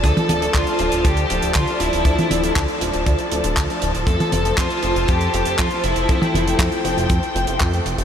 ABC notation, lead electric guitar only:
X:1
M:4/4
L:1/8
Q:1/4=119
K:Dm
V:1 name="Lead electric guitar"
A2 F F G2 F E- | E2 z6 | A2 F F G2 F E- | E2 z6 |]